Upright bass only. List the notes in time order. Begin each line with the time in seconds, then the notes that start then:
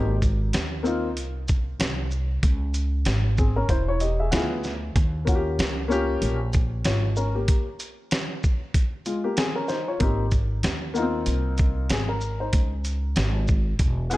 Already playing: G#1
0.54 D#2
1.17 C2
1.80 C2
2.43 C#2
3.06 G#1
3.69 E1
4.32 D2
4.96 D#2
5.59 C#2
6.22 A#1
6.85 G#1
10.01 G#1
10.63 D#2
11.27 C2
11.90 G#1
12.53 C#2
13.17 G#1
13.79 E1